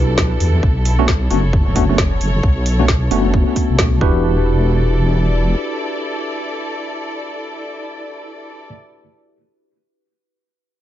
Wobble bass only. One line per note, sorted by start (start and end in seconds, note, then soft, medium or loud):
0.00 0.38 B1 medium
0.40 0.60 E2 medium
0.63 1.29 B1 loud
1.30 1.64 F#1 medium
1.67 1.74 F#1 medium
1.76 2.19 F#1 medium
2.21 2.41 F#1 medium
2.43 3.09 B1 medium
3.11 3.44 F#1 medium
3.69 4.00 B1 medium
4.01 5.55 E1 medium